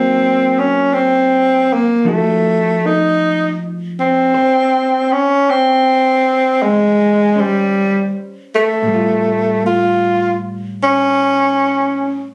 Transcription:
0.00 2.06 F#3 soft
0.00 2.06 A#3 soft
0.00 0.61 C4 medium
0.00 2.05 D#4 soft
0.59 0.95 C#4 medium
0.94 1.74 C4 medium
1.73 2.07 A#3 medium
2.05 4.31 F3 soft
2.05 4.32 A3 soft
2.05 2.88 A3 medium
2.05 4.32 D#4 soft
2.05 4.33 F#4 soft
2.86 3.60 D#4 medium
4.00 5.14 C4 medium
4.34 7.37 C5 soft
5.12 5.51 C#4 medium
5.50 6.64 C4 medium
6.62 7.41 G#3 medium
7.36 8.85 C#4 soft
7.36 8.86 C5 soft
7.40 8.14 G3 medium
8.55 9.61 A3 medium
8.82 12.34 A2 soft
8.87 12.34 G3 soft
8.94 12.34 F4 soft
9.66 10.35 F4 medium
10.83 12.25 C#4 medium

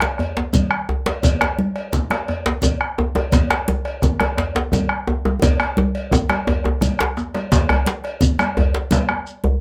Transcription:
0.00 bombo rim medium
0.00 cowbell soft
0.00 djembe slap medium
0.00 high conga medium
0.18 bombo rim soft
0.18 cowbell soft
0.18 djembe slap soft
0.18 djembe bass medium
0.37 djembe slap medium
0.37 djembe tone medium
0.53 bombo low loud
0.53 cowbell soft
0.53 high conga medium
0.53 low conga medium
0.53 shekere medium
0.71 bombo rim medium
0.89 djembe tone medium
1.06 cowbell soft
1.06 djembe slap medium
1.06 high conga medium
1.23 bombo low loud
1.23 cowbell medium
1.23 low conga medium
1.23 djembe bass medium
1.23 shekere medium
1.41 bombo rim medium
1.41 cowbell soft
1.41 djembe slap soft
1.41 djembe slap medium
1.41 djembe tone medium
1.59 high conga medium
1.76 bombo rim soft
1.76 cowbell soft
1.93 bombo rim soft
1.93 bombo low loud
1.93 djembe tone medium
1.93 low conga medium
1.93 shekere medium
2.10 bombo rim medium
2.10 cowbell soft
2.10 djembe slap medium
2.10 high conga medium
2.28 bombo rim soft
2.28 cowbell medium
2.28 djembe slap soft
2.28 djembe bass medium
2.46 djembe slap medium
2.46 djembe tone medium
2.62 bombo low medium
2.62 cowbell soft
2.62 djembe tone medium
2.62 low conga medium
2.62 shekere medium
2.81 bombo rim medium
2.98 djembe tone medium
3.15 cowbell soft
3.15 djembe slap medium
3.15 high conga medium
3.15 djembe tone medium
3.32 bombo low loud
3.32 cowbell medium
3.32 djembe slap medium
3.32 low conga medium
3.32 djembe bass medium
3.32 shekere medium
3.50 bombo rim medium
3.50 cowbell medium
3.50 djembe slap soft
3.50 djembe slap medium
3.50 djembe tone medium
3.68 high conga medium
3.68 djembe tone medium
3.85 bombo rim soft
3.85 cowbell soft
4.02 bombo rim soft
4.02 bombo low loud
4.02 djembe tone medium
4.02 low conga medium
4.02 shekere soft
4.20 bombo rim medium
4.20 cowbell soft
4.20 djembe slap medium
4.20 high conga medium
4.20 djembe tone medium
4.37 bombo rim soft
4.37 cowbell soft
4.37 djembe slap soft
4.37 djembe slap medium
4.37 djembe bass medium
4.55 djembe slap medium
4.55 djembe tone medium
4.72 bombo low medium
4.72 cowbell soft
4.72 high conga medium
4.72 djembe tone medium
4.72 low conga medium
4.72 shekere medium
4.89 bombo rim medium
5.07 djembe tone medium
5.25 djembe slap soft
5.25 djembe tone medium
5.25 high conga medium
5.42 bombo low loud
5.42 cowbell medium
5.42 high conga soft
5.42 djembe tone medium
5.42 djembe bass medium
5.42 low conga medium
5.42 shekere medium
5.60 bombo rim medium
5.60 cowbell medium
5.60 djembe slap soft
5.60 djembe tone medium
5.77 djembe slap soft
5.77 high conga medium
5.77 djembe tone medium
5.95 cowbell soft
6.11 bombo low loud
6.11 djembe slap soft
6.11 djembe tone medium
6.11 djembe tone loud
6.11 low conga medium
6.11 shekere medium
6.29 bombo rim medium
6.29 cowbell soft
6.29 djembe slap medium
6.29 high conga medium
6.47 cowbell medium
6.47 djembe tone loud
6.47 djembe bass medium
6.64 bombo rim soft
6.64 djembe tone medium
6.81 bombo rim soft
6.81 bombo low medium
6.81 cowbell soft
6.81 high conga medium
6.81 low conga medium
6.81 shekere medium
6.99 bombo rim medium
6.99 djembe slap soft
6.99 djembe slap loud
7.17 bombo rim soft
7.17 high conga soft
7.17 djembe tone medium
7.17 shekere soft
7.34 cowbell medium
7.34 djembe slap medium
7.34 high conga medium
7.52 bombo low loud
7.52 cowbell medium
7.52 djembe slap medium
7.52 low conga medium
7.52 djembe bass medium
7.52 shekere medium
7.69 bombo rim medium
7.69 cowbell medium
7.69 djembe tone medium
7.69 djembe bass medium
7.86 djembe slap soft
7.86 djembe slap medium
7.86 high conga medium
7.86 shekere soft
8.04 bombo rim soft
8.04 cowbell soft
8.04 high conga soft
8.21 bombo low loud
8.21 high conga soft
8.21 low conga medium
8.21 shekere medium
8.39 bombo rim medium
8.39 cowbell medium
8.39 high conga medium
8.39 djembe tone medium
8.39 shekere soft
8.57 cowbell medium
8.57 djembe slap soft
8.57 djembe bass medium
8.74 djembe slap medium
8.91 bombo low loud
8.91 cowbell medium
8.91 djembe slap medium
8.91 high conga medium
8.91 low conga medium
8.91 shekere medium
9.09 bombo rim medium
9.09 djembe tone medium
9.27 shekere soft
9.44 high conga medium
9.44 djembe bass medium

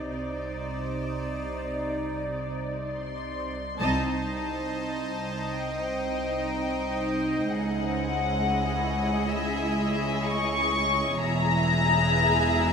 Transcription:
0.00 0.10 D#4 soft
0.00 0.11 D5 medium
0.11 3.56 C2 soft
0.11 3.56 C3 soft
0.11 3.56 D#4 soft
0.11 3.76 D#4 soft
0.11 3.77 C5 soft
0.11 3.56 D5 soft
0.11 3.77 D5 soft
2.87 3.76 C6 soft
3.79 7.45 C2 soft
3.79 7.45 C4 soft
3.79 7.45 D#4 soft
3.79 7.46 D#4 medium
3.79 7.46 C5 medium
3.79 7.45 D#5 medium
3.79 7.46 D#5 soft
3.79 5.60 A5 medium
5.65 7.49 G5 soft
7.48 11.15 C#2 soft
7.48 11.15 G#3 soft
7.48 11.18 E4 soft
7.48 11.15 E4 soft
7.48 11.15 G#4 soft
7.48 11.18 C#5 soft
7.48 11.15 D#5 soft
7.48 9.34 F#5 medium
7.48 11.14 D#6 soft
9.33 10.24 E5 medium
10.25 11.18 C#6 medium
11.18 12.73 E1 medium
11.18 12.73 E2 medium
11.18 12.73 G#3 medium
11.18 12.73 E4 medium
11.18 12.73 G#4 medium
11.18 12.73 B4 medium
11.18 12.73 E5 medium
11.18 12.73 A#5 medium

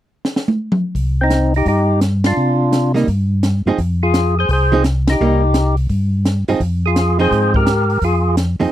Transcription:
0.25 snare medium
0.36 snare medium
0.48 high tom medium
0.72 mid tom medium
0.95 1.62 C2 medium
0.95 kick soft
0.95 open hi-hat soft
1.21 1.53 C4 medium
1.21 1.54 D#4 medium
1.30 snare medium
1.30 closed hi-hat medium
1.54 1.67 D#4 medium
1.54 1.68 G4 medium
1.54 open hi-hat soft
1.65 2.33 G2 medium
1.65 2.00 D#4 medium
1.65 2.01 G4 medium
1.65 kick soft
1.65 open hi-hat soft
2.01 snare medium
2.01 closed hi-hat soft
2.24 2.92 D4 medium
2.24 2.92 F4 medium
2.24 snare medium
2.24 ride medium
2.37 3.04 C3 medium
2.73 snare medium
2.73 closed hi-hat medium
2.94 3.06 G3 medium
2.94 3.06 A#3 medium
2.94 3.07 D#4 medium
2.94 snare soft
2.94 open hi-hat soft
3.07 3.62 G2 medium
3.07 kick soft
3.07 open hi-hat soft
3.43 snare medium
3.43 closed hi-hat medium
3.66 3.72 G2 soft
3.66 3.78 F3 medium
3.66 3.78 C4 medium
3.66 3.78 D#4 medium
3.66 3.78 G#4 medium
3.78 4.45 F2 medium
3.78 kick soft
3.78 open hi-hat soft
4.03 4.35 F4 medium
4.03 4.38 G#4 medium
4.14 snare medium
4.14 closed hi-hat medium
4.39 4.49 G#4 medium
4.39 4.51 C5 medium
4.49 5.16 C2 medium
4.49 4.83 G#4 medium
4.49 kick soft
4.49 open hi-hat soft
4.53 4.84 C5 loud
4.72 4.83 F3 medium
4.72 4.83 C4 medium
4.72 4.84 D#4 medium
4.72 4.84 G#4 medium
4.84 snare medium
4.84 closed hi-hat medium
5.07 5.75 D#4 medium
5.07 snare medium
5.07 ride medium
5.12 5.76 G4 medium
5.20 5.87 C2 medium
5.20 5.41 G3 medium
5.20 5.41 A#3 medium
5.20 5.42 D#4 medium
5.54 snare medium
5.54 closed hi-hat medium
5.77 open hi-hat soft
5.89 6.44 G2 medium
5.89 kick soft
5.89 open hi-hat soft
6.25 snare medium
6.25 closed hi-hat soft
6.48 6.55 G2 soft
6.48 6.60 F3 medium
6.48 6.60 C4 medium
6.48 6.60 D#4 medium
6.48 6.60 G#4 medium
6.48 open hi-hat soft
6.60 7.27 F2 medium
6.60 kick soft
6.60 open hi-hat soft
6.86 7.18 F4 medium
6.86 7.18 G#4 medium
6.96 snare medium
6.96 closed hi-hat medium
7.19 7.64 F3 medium
7.19 7.64 C4 medium
7.19 7.64 D#4 medium
7.19 7.64 G#4 medium
7.19 7.53 G#4 medium
7.19 7.56 C5 medium
7.19 open hi-hat soft
7.31 7.98 G#2 medium
7.31 kick soft
7.31 open hi-hat soft
7.54 7.99 G4 medium
7.54 8.04 A#4 medium
7.54 kick medium
7.67 snare medium
7.67 closed hi-hat soft
7.90 open hi-hat soft
8.02 8.56 F2 medium
8.02 8.36 F4 medium
8.02 8.36 G#4 medium
8.02 kick soft
8.02 open hi-hat soft
8.37 snare medium
8.37 closed hi-hat medium
8.60 8.67 F2 soft
8.60 8.71 F3 medium
8.60 8.71 C4 medium
8.60 8.71 D#4 medium
8.60 8.71 G#4 medium
8.60 open hi-hat soft

